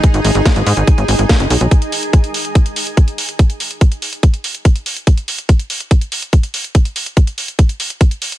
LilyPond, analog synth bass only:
\new Staff \with { instrumentName = "Analog synth bass" } { \clef bass \time 4/4 \key gis \minor \tempo 4 = 143 r16 gis,,16 gis,,16 gis,,16 r16 gis,,16 gis,16 gis,,16 r16 gis,,16 gis,,16 gis,,16 r16 fis,,16 b,,16 b,,16 | r1 | r1 | r1 |
r1 | }